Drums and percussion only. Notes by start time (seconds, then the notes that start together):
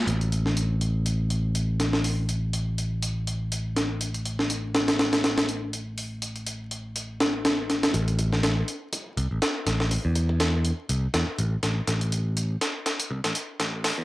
0.08 closed hi-hat
0.21 closed hi-hat
0.32 closed hi-hat
0.46 snare
0.57 closed hi-hat
0.81 closed hi-hat
1.06 closed hi-hat
1.30 closed hi-hat
1.55 closed hi-hat
1.80 snare, closed hi-hat
1.93 snare
2.04 open hi-hat
2.29 closed hi-hat
2.53 closed hi-hat
2.78 closed hi-hat
3.03 closed hi-hat
3.27 closed hi-hat
3.52 closed hi-hat
3.76 snare, closed hi-hat
4.01 closed hi-hat
4.14 closed hi-hat
4.25 closed hi-hat
4.39 snare
4.50 closed hi-hat
4.75 snare, closed hi-hat
4.88 snare, closed hi-hat
4.99 snare, closed hi-hat
5.13 snare, closed hi-hat
5.24 snare, closed hi-hat
5.38 snare, closed hi-hat
5.49 closed hi-hat
5.73 closed hi-hat
5.98 open hi-hat
6.22 closed hi-hat
6.36 closed hi-hat
6.47 closed hi-hat
6.71 closed hi-hat
6.96 closed hi-hat
7.20 snare, closed hi-hat
7.45 snare, closed hi-hat
7.70 snare, closed hi-hat
7.83 snare, closed hi-hat
7.94 kick, closed hi-hat
8.08 closed hi-hat
8.19 kick, closed hi-hat
8.33 snare
8.43 snare, closed hi-hat
8.68 closed hi-hat
8.93 kick, closed hi-hat
9.17 closed hi-hat
9.42 snare, closed hi-hat
9.67 snare, closed hi-hat
9.80 snare
9.91 kick, open hi-hat
10.15 kick, closed hi-hat
10.29 kick
10.40 snare, closed hi-hat
10.65 closed hi-hat
10.89 closed hi-hat
11.14 snare, closed hi-hat
11.38 closed hi-hat
11.63 snare, closed hi-hat
11.87 snare, closed hi-hat
12.01 closed hi-hat
12.12 closed hi-hat
12.37 closed hi-hat
12.61 snare, closed hi-hat
12.86 snare, closed hi-hat
13.00 closed hi-hat
13.24 snare, closed hi-hat
13.35 closed hi-hat
13.60 snare, closed hi-hat
13.84 snare, open hi-hat